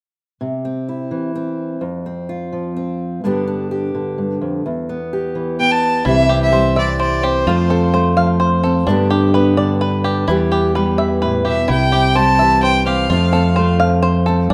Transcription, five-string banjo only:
6.05 E4
6.29 G4
6.53 C5
6.76 E5
7.00 C5
7.23 G4
7.47 F4
7.70 A4
7.94 C5
8.17 F5
8.40 C5
8.64 A4
8.87 D4
9.10 G4
9.34 B4
9.57 D5
9.81 B4
10.04 G4
10.28 E4
10.52 G4
10.75 B4
10.98 E5
11.22 B4
11.45 G4
11.68 E4
11.92 G4
12.15 C5
12.39 E5
12.63 C5
12.86 G4
13.10 F4
13.33 A4
13.56 C5
13.80 F5
14.03 C5
14.26 A4
14.50 D4

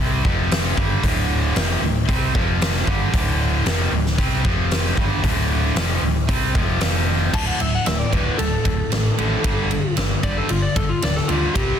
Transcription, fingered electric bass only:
0.00 C2
0.25 F1
0.77 G1
1.03 D1
1.56 F1
1.81 D1
2.08 C2
2.35 F1
2.87 G1
3.13 D1
3.66 F1
3.92 D1
4.18 C2
4.45 F1
4.97 G1
5.23 D1
5.75 F1
6.02 D1
6.28 C2
6.55 F1
6.82 F1
7.33 D1
7.60 D1
7.87 D1
8.12 D1
8.39 D1
8.65 D1
8.92 A1
9.18 A1
9.44 G1
9.97 G1
10.23 G1
10.50 G1
10.76 G1
11.03 D1
11.29 D2
11.55 C2

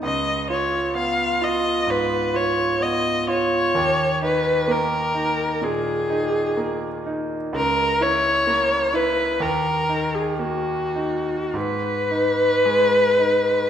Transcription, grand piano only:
0.03 C#2
0.50 F4
0.95 B3
1.42 F4
1.87 G#2
2.34 F4
2.81 B3
3.28 F4
3.75 D#2
4.22 D#4
4.68 A#3
5.14 D#4
5.62 A#2
6.10 D#4
6.57 A#3
7.06 D#4
7.53 C#2
8.01 E4
8.47 A#3
8.94 E4
9.40 D#2
9.89 D#4
10.39 A#3
10.95 D#4
11.54 G#2
12.11 D#4
12.65 G#3
13.19 D#4

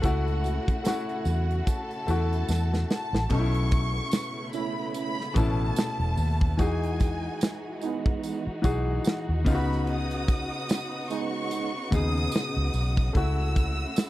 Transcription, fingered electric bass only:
0.04 C#2
0.68 muted fingered electric bass stroke
1.26 E2
2.08 E2
2.49 E2
3.13 A1
3.30 B1
5.36 A1
5.99 E1
6.17 D#2
6.59 E2
8.47 muted fingered electric bass stroke
8.64 B1
9.29 D#2
9.46 C#2
11.92 D#2
12.57 C#2
12.74 B1
13.15 C#2

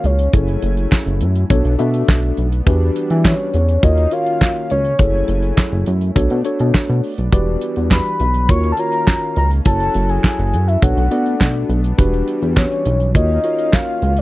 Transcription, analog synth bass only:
0.04 C#2
0.34 F#1
0.63 F#1
1.06 F#1
1.21 F#2
1.50 B1
1.65 B1
1.80 B2
2.09 B1
2.38 B1
2.67 E2
3.11 E3
3.54 E2
3.83 D#2
4.71 C#2
4.99 F#1
5.29 F#1
5.73 F#1
5.87 F#2
6.16 B1
6.31 B2
6.60 B2
6.90 B2
7.18 B1
7.33 E1
7.77 E2
8.20 B1
8.49 D#2
9.37 C#2
9.66 F#1
9.95 F#1
10.39 F#1
10.53 F#2
10.82 B1
10.97 B1
11.12 B2
11.41 B1
11.69 B1
11.99 E1
12.42 E2
12.86 B1
13.15 D#2
14.02 C#2

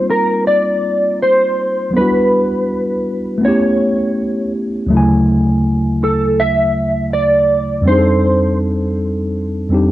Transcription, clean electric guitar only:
0.10 A#4
0.47 D5
1.22 C5
1.96 B4
3.45 C#5
6.04 A4
6.40 E5
7.14 D5
7.88 C5

